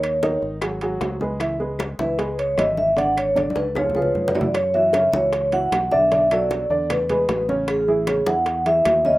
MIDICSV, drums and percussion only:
0, 0, Header, 1, 2, 480
1, 0, Start_track
1, 0, Key_signature, 4, "minor"
1, 0, Tempo, 392157
1, 1721, Time_signature, 4, 2, 24, 8
1, 5564, Key_signature, 3, "minor"
1, 11241, End_track
2, 0, Start_track
2, 0, Title_t, "Drums"
2, 41, Note_on_c, 9, 60, 33
2, 41, Note_on_c, 9, 63, 33
2, 41, Note_on_c, 9, 75, 67
2, 43, Note_on_c, 9, 65, 88
2, 163, Note_off_c, 9, 60, 0
2, 163, Note_off_c, 9, 75, 0
2, 164, Note_off_c, 9, 63, 0
2, 165, Note_off_c, 9, 65, 0
2, 278, Note_on_c, 9, 63, 81
2, 281, Note_on_c, 9, 60, 59
2, 281, Note_on_c, 9, 65, 68
2, 281, Note_on_c, 9, 66, 62
2, 400, Note_off_c, 9, 63, 0
2, 403, Note_off_c, 9, 60, 0
2, 404, Note_off_c, 9, 65, 0
2, 404, Note_off_c, 9, 66, 0
2, 515, Note_on_c, 9, 60, 35
2, 522, Note_on_c, 9, 63, 37
2, 637, Note_off_c, 9, 60, 0
2, 644, Note_off_c, 9, 63, 0
2, 752, Note_on_c, 9, 75, 72
2, 755, Note_on_c, 9, 60, 68
2, 758, Note_on_c, 9, 65, 98
2, 764, Note_on_c, 9, 63, 29
2, 874, Note_off_c, 9, 75, 0
2, 877, Note_off_c, 9, 60, 0
2, 881, Note_off_c, 9, 65, 0
2, 887, Note_off_c, 9, 63, 0
2, 995, Note_on_c, 9, 65, 63
2, 1005, Note_on_c, 9, 63, 36
2, 1117, Note_off_c, 9, 65, 0
2, 1127, Note_off_c, 9, 63, 0
2, 1235, Note_on_c, 9, 60, 65
2, 1235, Note_on_c, 9, 61, 72
2, 1240, Note_on_c, 9, 63, 69
2, 1240, Note_on_c, 9, 65, 67
2, 1240, Note_on_c, 9, 66, 82
2, 1358, Note_off_c, 9, 60, 0
2, 1358, Note_off_c, 9, 61, 0
2, 1362, Note_off_c, 9, 63, 0
2, 1362, Note_off_c, 9, 65, 0
2, 1362, Note_off_c, 9, 66, 0
2, 1469, Note_on_c, 9, 60, 31
2, 1479, Note_on_c, 9, 63, 82
2, 1591, Note_off_c, 9, 60, 0
2, 1602, Note_off_c, 9, 63, 0
2, 1712, Note_on_c, 9, 75, 66
2, 1717, Note_on_c, 9, 60, 64
2, 1718, Note_on_c, 9, 63, 37
2, 1722, Note_on_c, 9, 65, 87
2, 1834, Note_off_c, 9, 75, 0
2, 1839, Note_off_c, 9, 60, 0
2, 1840, Note_off_c, 9, 63, 0
2, 1844, Note_off_c, 9, 65, 0
2, 1959, Note_on_c, 9, 63, 33
2, 2081, Note_off_c, 9, 63, 0
2, 2191, Note_on_c, 9, 75, 68
2, 2194, Note_on_c, 9, 60, 53
2, 2200, Note_on_c, 9, 63, 85
2, 2200, Note_on_c, 9, 65, 90
2, 2200, Note_on_c, 9, 66, 57
2, 2313, Note_off_c, 9, 75, 0
2, 2316, Note_off_c, 9, 60, 0
2, 2323, Note_off_c, 9, 63, 0
2, 2323, Note_off_c, 9, 65, 0
2, 2323, Note_off_c, 9, 66, 0
2, 2437, Note_on_c, 9, 63, 95
2, 2559, Note_off_c, 9, 63, 0
2, 2677, Note_on_c, 9, 60, 65
2, 2681, Note_on_c, 9, 63, 33
2, 2682, Note_on_c, 9, 65, 63
2, 2800, Note_off_c, 9, 60, 0
2, 2803, Note_off_c, 9, 63, 0
2, 2805, Note_off_c, 9, 65, 0
2, 2920, Note_on_c, 9, 63, 35
2, 2925, Note_on_c, 9, 65, 67
2, 3042, Note_off_c, 9, 63, 0
2, 3048, Note_off_c, 9, 65, 0
2, 3154, Note_on_c, 9, 60, 58
2, 3154, Note_on_c, 9, 61, 67
2, 3154, Note_on_c, 9, 75, 65
2, 3163, Note_on_c, 9, 63, 74
2, 3167, Note_on_c, 9, 65, 91
2, 3167, Note_on_c, 9, 66, 82
2, 3276, Note_off_c, 9, 60, 0
2, 3276, Note_off_c, 9, 61, 0
2, 3276, Note_off_c, 9, 75, 0
2, 3285, Note_off_c, 9, 63, 0
2, 3290, Note_off_c, 9, 65, 0
2, 3290, Note_off_c, 9, 66, 0
2, 3395, Note_on_c, 9, 63, 82
2, 3518, Note_off_c, 9, 63, 0
2, 3631, Note_on_c, 9, 60, 58
2, 3639, Note_on_c, 9, 63, 30
2, 3652, Note_on_c, 9, 65, 74
2, 3754, Note_off_c, 9, 60, 0
2, 3761, Note_off_c, 9, 63, 0
2, 3774, Note_off_c, 9, 65, 0
2, 3876, Note_on_c, 9, 60, 30
2, 3882, Note_on_c, 9, 63, 35
2, 3883, Note_on_c, 9, 75, 59
2, 3887, Note_on_c, 9, 65, 87
2, 3998, Note_off_c, 9, 60, 0
2, 4005, Note_off_c, 9, 63, 0
2, 4005, Note_off_c, 9, 75, 0
2, 4010, Note_off_c, 9, 65, 0
2, 4115, Note_on_c, 9, 60, 54
2, 4120, Note_on_c, 9, 63, 84
2, 4129, Note_on_c, 9, 65, 62
2, 4129, Note_on_c, 9, 66, 59
2, 4237, Note_off_c, 9, 60, 0
2, 4243, Note_off_c, 9, 63, 0
2, 4252, Note_off_c, 9, 65, 0
2, 4252, Note_off_c, 9, 66, 0
2, 4286, Note_on_c, 9, 63, 90
2, 4352, Note_on_c, 9, 60, 80
2, 4365, Note_on_c, 9, 65, 69
2, 4409, Note_off_c, 9, 63, 0
2, 4475, Note_off_c, 9, 60, 0
2, 4487, Note_off_c, 9, 65, 0
2, 4594, Note_on_c, 9, 60, 84
2, 4607, Note_on_c, 9, 63, 97
2, 4607, Note_on_c, 9, 65, 73
2, 4607, Note_on_c, 9, 75, 76
2, 4716, Note_off_c, 9, 60, 0
2, 4729, Note_off_c, 9, 65, 0
2, 4729, Note_off_c, 9, 75, 0
2, 4730, Note_off_c, 9, 63, 0
2, 4769, Note_on_c, 9, 64, 76
2, 4831, Note_on_c, 9, 60, 77
2, 4891, Note_off_c, 9, 64, 0
2, 4921, Note_on_c, 9, 64, 67
2, 4953, Note_off_c, 9, 60, 0
2, 5043, Note_off_c, 9, 64, 0
2, 5081, Note_on_c, 9, 64, 79
2, 5203, Note_off_c, 9, 64, 0
2, 5237, Note_on_c, 9, 64, 95
2, 5321, Note_on_c, 9, 61, 78
2, 5328, Note_on_c, 9, 66, 91
2, 5359, Note_off_c, 9, 64, 0
2, 5397, Note_on_c, 9, 64, 109
2, 5443, Note_off_c, 9, 61, 0
2, 5451, Note_off_c, 9, 66, 0
2, 5520, Note_off_c, 9, 64, 0
2, 5563, Note_on_c, 9, 60, 63
2, 5563, Note_on_c, 9, 63, 36
2, 5566, Note_on_c, 9, 65, 89
2, 5568, Note_on_c, 9, 75, 59
2, 5685, Note_off_c, 9, 60, 0
2, 5686, Note_off_c, 9, 63, 0
2, 5688, Note_off_c, 9, 65, 0
2, 5691, Note_off_c, 9, 75, 0
2, 5807, Note_on_c, 9, 63, 34
2, 5929, Note_off_c, 9, 63, 0
2, 6036, Note_on_c, 9, 60, 61
2, 6045, Note_on_c, 9, 65, 91
2, 6045, Note_on_c, 9, 66, 54
2, 6046, Note_on_c, 9, 75, 67
2, 6050, Note_on_c, 9, 63, 74
2, 6158, Note_off_c, 9, 60, 0
2, 6167, Note_off_c, 9, 65, 0
2, 6167, Note_off_c, 9, 66, 0
2, 6169, Note_off_c, 9, 75, 0
2, 6172, Note_off_c, 9, 63, 0
2, 6285, Note_on_c, 9, 63, 103
2, 6407, Note_off_c, 9, 63, 0
2, 6519, Note_on_c, 9, 60, 70
2, 6525, Note_on_c, 9, 65, 70
2, 6526, Note_on_c, 9, 63, 34
2, 6641, Note_off_c, 9, 60, 0
2, 6647, Note_off_c, 9, 65, 0
2, 6648, Note_off_c, 9, 63, 0
2, 6760, Note_on_c, 9, 65, 63
2, 6763, Note_on_c, 9, 63, 35
2, 6883, Note_off_c, 9, 65, 0
2, 6886, Note_off_c, 9, 63, 0
2, 7004, Note_on_c, 9, 63, 70
2, 7004, Note_on_c, 9, 75, 68
2, 7005, Note_on_c, 9, 60, 63
2, 7005, Note_on_c, 9, 61, 72
2, 7006, Note_on_c, 9, 65, 101
2, 7006, Note_on_c, 9, 66, 80
2, 7126, Note_off_c, 9, 75, 0
2, 7127, Note_off_c, 9, 63, 0
2, 7128, Note_off_c, 9, 60, 0
2, 7128, Note_off_c, 9, 61, 0
2, 7129, Note_off_c, 9, 65, 0
2, 7129, Note_off_c, 9, 66, 0
2, 7239, Note_on_c, 9, 63, 92
2, 7362, Note_off_c, 9, 63, 0
2, 7487, Note_on_c, 9, 60, 65
2, 7489, Note_on_c, 9, 65, 62
2, 7490, Note_on_c, 9, 63, 33
2, 7609, Note_off_c, 9, 60, 0
2, 7611, Note_off_c, 9, 65, 0
2, 7612, Note_off_c, 9, 63, 0
2, 7726, Note_on_c, 9, 60, 36
2, 7726, Note_on_c, 9, 65, 88
2, 7726, Note_on_c, 9, 75, 66
2, 7728, Note_on_c, 9, 63, 33
2, 7848, Note_off_c, 9, 75, 0
2, 7849, Note_off_c, 9, 60, 0
2, 7849, Note_off_c, 9, 65, 0
2, 7851, Note_off_c, 9, 63, 0
2, 7965, Note_on_c, 9, 63, 83
2, 7966, Note_on_c, 9, 60, 55
2, 7969, Note_on_c, 9, 65, 62
2, 7969, Note_on_c, 9, 66, 59
2, 8087, Note_off_c, 9, 63, 0
2, 8088, Note_off_c, 9, 60, 0
2, 8091, Note_off_c, 9, 65, 0
2, 8091, Note_off_c, 9, 66, 0
2, 8205, Note_on_c, 9, 60, 34
2, 8209, Note_on_c, 9, 63, 37
2, 8327, Note_off_c, 9, 60, 0
2, 8332, Note_off_c, 9, 63, 0
2, 8444, Note_on_c, 9, 75, 67
2, 8446, Note_on_c, 9, 60, 68
2, 8448, Note_on_c, 9, 65, 97
2, 8450, Note_on_c, 9, 63, 35
2, 8450, Note_on_c, 9, 64, 81
2, 8566, Note_off_c, 9, 75, 0
2, 8569, Note_off_c, 9, 60, 0
2, 8570, Note_off_c, 9, 65, 0
2, 8572, Note_off_c, 9, 63, 0
2, 8572, Note_off_c, 9, 64, 0
2, 8684, Note_on_c, 9, 65, 71
2, 8689, Note_on_c, 9, 63, 35
2, 8689, Note_on_c, 9, 64, 66
2, 8806, Note_off_c, 9, 65, 0
2, 8811, Note_off_c, 9, 63, 0
2, 8811, Note_off_c, 9, 64, 0
2, 8920, Note_on_c, 9, 65, 76
2, 8920, Note_on_c, 9, 66, 79
2, 8923, Note_on_c, 9, 60, 70
2, 8923, Note_on_c, 9, 61, 69
2, 8927, Note_on_c, 9, 63, 66
2, 9042, Note_off_c, 9, 65, 0
2, 9042, Note_off_c, 9, 66, 0
2, 9045, Note_off_c, 9, 60, 0
2, 9045, Note_off_c, 9, 61, 0
2, 9050, Note_off_c, 9, 63, 0
2, 9163, Note_on_c, 9, 60, 31
2, 9168, Note_on_c, 9, 63, 90
2, 9285, Note_off_c, 9, 60, 0
2, 9291, Note_off_c, 9, 63, 0
2, 9399, Note_on_c, 9, 60, 58
2, 9399, Note_on_c, 9, 65, 88
2, 9402, Note_on_c, 9, 75, 61
2, 9411, Note_on_c, 9, 63, 35
2, 9521, Note_off_c, 9, 60, 0
2, 9521, Note_off_c, 9, 65, 0
2, 9524, Note_off_c, 9, 75, 0
2, 9533, Note_off_c, 9, 63, 0
2, 9644, Note_on_c, 9, 63, 34
2, 9767, Note_off_c, 9, 63, 0
2, 9877, Note_on_c, 9, 60, 56
2, 9879, Note_on_c, 9, 65, 95
2, 9879, Note_on_c, 9, 66, 59
2, 9879, Note_on_c, 9, 75, 66
2, 9881, Note_on_c, 9, 63, 81
2, 9999, Note_off_c, 9, 60, 0
2, 10002, Note_off_c, 9, 65, 0
2, 10002, Note_off_c, 9, 66, 0
2, 10002, Note_off_c, 9, 75, 0
2, 10004, Note_off_c, 9, 63, 0
2, 10116, Note_on_c, 9, 63, 107
2, 10238, Note_off_c, 9, 63, 0
2, 10354, Note_on_c, 9, 60, 63
2, 10358, Note_on_c, 9, 65, 67
2, 10359, Note_on_c, 9, 63, 34
2, 10477, Note_off_c, 9, 60, 0
2, 10480, Note_off_c, 9, 65, 0
2, 10481, Note_off_c, 9, 63, 0
2, 10600, Note_on_c, 9, 65, 71
2, 10601, Note_on_c, 9, 63, 33
2, 10723, Note_off_c, 9, 63, 0
2, 10723, Note_off_c, 9, 65, 0
2, 10838, Note_on_c, 9, 60, 59
2, 10838, Note_on_c, 9, 61, 76
2, 10838, Note_on_c, 9, 65, 101
2, 10838, Note_on_c, 9, 66, 85
2, 10845, Note_on_c, 9, 63, 72
2, 10845, Note_on_c, 9, 75, 59
2, 10960, Note_off_c, 9, 60, 0
2, 10960, Note_off_c, 9, 61, 0
2, 10960, Note_off_c, 9, 65, 0
2, 10960, Note_off_c, 9, 66, 0
2, 10967, Note_off_c, 9, 75, 0
2, 10968, Note_off_c, 9, 63, 0
2, 11073, Note_on_c, 9, 63, 83
2, 11196, Note_off_c, 9, 63, 0
2, 11241, End_track
0, 0, End_of_file